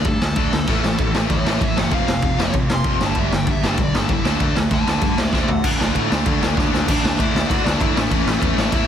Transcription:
0.05 G2 D3 A3 A4, kick, ride
0.22 D2 D3 A3 A4, snare
0.36 D2 D3 A3 D4, kick, ride
0.53 D2 D3 A3, snare
0.67 A1 A2 E3 A3, kick, crash
0.84 A1 A2 E3, snare
0.98 A1 A2 E3, kick, ride
1.14 A1 A2 E3 A3, snare
1.30 D2 A2 E3 C#5 E5, kick, ride
1.45 A1 A2 E3 A3 C#5 E5, snare
1.61 A1 A2 E3 E5 G5, kick, ride
1.76 F#1 A2 E3 A3 E5 G5, snare
1.91 F1 F2 C3 F3 F5, kick, ride
2.08 F1 F2 C3, snare
2.22 F1 F2 C3, kick, ride
2.38 F1 F2 C3 F3, snare
2.53 A1 F2 C3, kick, ride
2.69 F1 F2 C3, snare
2.73 C6
2.84 F1 F2 C3 F3, kick, ride
3.00 G1 G2 D3 G3 A5, snare
3.15 G1 G2 D3 G3 E5, kick, ride
3.32 G1 G2 D3 G5, snare
3.47 G1 G2 D3, kick, ride
3.51 E5
3.63 G1 G2 D3 G3 A4, snare
3.77 B1 G2 D3, kick, ride
3.83 D5
3.94 G1 G2 D3 G3, snare
3.99 A4
4.09 G1 G2 D3 G3 E4, kick, ride
4.25 D2 D3 A3 D4 A4, snare
4.40 D2 D3 A3 D4 A4, kick, ride
4.56 D2 D3 A3, snare
4.71 D2 D3 A3 F#5 A5, kick, ride
4.86 D2 D3 A3 D4, snare
4.90 F#5 A5
5.01 G2 D3 A3, kick, ride
5.05 F#5 A5
5.17 D2 D3 A3 C5 E5, snare
5.33 D2 D3 A3 D4 C5 E5, kick, snare
5.48 D2 D3 A3 F#5, floor tom
5.64 D2 D3 A3 D4, kick, crash
5.80 D2 D3 A3 D4, snare
5.87 kick
5.95 A2 D3 A3 D4, kick, ride
6.11 D2 D3 A3 D4, snare
6.26 D2 D3 A3 D4, kick, ride
6.42 D2 D3 A3 D4, snare
6.57 D2 D3 A3 D4, kick, snare
6.72 D2 D3 A3 D4, snare
6.87 D2 D3 A3 D4 D5, kick, crash
7.04 D2 D3 A3 D4, snare
7.18 A2 D3 A3 D4 E4 E5, kick, ride
7.34 D2 D3 A3 D4, snare
7.48 A2 D3 A3 D4 F#4 F#5, kick, ride
7.64 D2 D3 A3 D4 D5, snare
7.79 G#1 D3 A3 D4 E4 E5, kick, ride
7.95 A1 A2 E3 A3 D4 D5, snare
8.11 A1 A2 E3 A3 C#4 C#5, kick, ride
8.26 A1 A2 E3 A3, snare
8.41 E2 A2 E3 A3, kick, ride
8.56 A1 A2 E3 A3 D5, snare
8.61 D4
8.70 E2 A2 E3 A3 D5 E5, kick, ride
8.75 E4

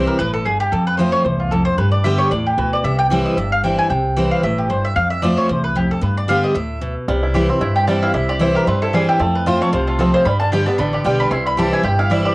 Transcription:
Already playing: C3 E3 G3 C4 E4
0.07 A#4
0.18 G1 A2 B4
0.33 A4
0.45 G2 G#4
0.60 G4
0.72 F2 A4
0.87 B4
0.97 F3 A3 C4 F4 C5
1.12 C#5
1.25 C2 E2 C5
1.40 F4
1.51 F2 A4
1.65 C5
1.78 G2 B4
1.92 D5
2.04 D3 G3 B3 G4 E5
2.18 C#5
2.31 E2 A2 D5
2.46 G4
2.58 D2 B2 B4
2.73 D5
2.84 C2 C3 E5
2.99 G5
3.10 E3 G3 C4 E4
3.26 D#5
3.37 G1 G2 E5
3.52 F5
3.64 E3 G3 C4 E4 G5
3.79 G#5
3.90 C2 C3 G5
4.16 E3 G3 C4 E4
4.31 F5
4.43 G1 A2 E5
4.58 G4
4.70 G2 C5
4.85 E5
4.96 F2 F5
5.10 E5
5.22 F3 A3 C4 F4 D5
5.37 C#5
5.49 C2 E2 C5
5.64 B4
5.75 F2 G4
5.91 A4
6.01 G2 B4
6.17 D5
6.28 D3 G3 B3 G4 F5
6.44 D#5
6.55 D2 A2 E5
6.82 B2
7.08 C2 C3 G3
7.23 E4
7.34 E3 G3 C4 E4 G4
7.49 C4 E4
7.61 G2 E4
7.76 G4 G5
7.88 E3 G3 C4 E4 A5
8.03 E4 F5
8.14 C2 C3 E4 E5
8.29 G4 D5
8.39 E3 G3 C4 E4 C5
8.55 G4 A#4
8.67 G2 C4 B4
8.82 E4 A4
8.93 E3 G3 C4 E4 G#4
9.09 E4 G4
9.19 F2 A3 A4
9.35 B4
9.46 F3 A3 C4 F4 C5
9.60 A3 C4 F4 C#5
9.72 C2 C3 F4 C5
9.87 A3 F4
9.99 F3 A3 C4 F4 A4
10.14 F4 C5
10.25 G2 G3 B5
10.40 D4 A5
10.52 D3 G3 B3 G4 G5
10.66 B3 G4 A5
10.78 A1 D3 D4 B5
10.93 G4 D5
11.04 B1 D3 G3 B3 G4 G5
11.20 D4 B5
11.31 C2 C3 E4 C6
11.46 G3 B5
11.57 E3 G3 C4 E4 G4 A5
11.73 E4 G#5
11.84 G1 G2 G4 G5
11.99 E4 F5
12.10 E3 G3 C4 E4 E5
12.25 G4 D5

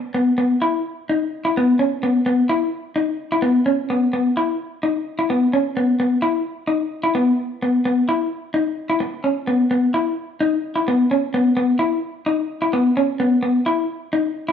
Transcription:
0.14 B3
0.38 B3
0.62 E4
1.09 D#4
1.45 E4
1.57 B3
1.79 C#4
2.03 B3
2.26 B3
2.49 E4
2.96 D#4
3.32 E4
3.42 B3
3.66 C#4
3.90 B3
4.13 B3
4.37 E4
4.83 D#4
5.19 E4
5.30 B3
5.53 C#4
5.77 B3
6.00 B3
6.22 E4
6.67 D#4
7.04 E4
7.15 B3
7.62 B3
7.85 B3
8.09 E4
8.54 D#4
8.90 E4
9.00 muted clean electric guitar stroke
9.24 C#4
9.47 B3
9.71 B3
9.94 E4
10.41 D#4
10.76 E4
10.88 B3
11.11 C#4
11.34 B3
11.57 B3
11.79 E4
12.26 D#4
12.62 E4
12.73 B3
12.97 C#4
13.20 B3
13.43 B3
13.66 E4
14.13 D#4
14.49 E4

